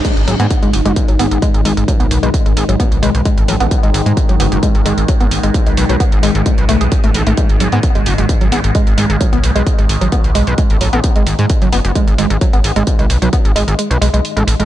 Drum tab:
CC |x---------------|----------------|----------------|----------------|
HH |xxoxxxoxxxoxxxox|xxoxxxoxxxoxxxox|xxoxxxoxxxoxxxox|xxoxxxoxxxoxxxox|
BD |o---o---o---o---|o---o---o---o---|o---o---o---o---|o---o---o---o---|

CC |----------------|----------------|----------------|----------------|
HH |xxoxxxoxxxoxxxox|xxoxxxoxxxoxxxox|xxoxxxoxxxoxxxox|xxoxxxoxxxoxoxox|
BD |o---o---o---o---|o---o---o---o---|o---o---o---o---|o---o-----------|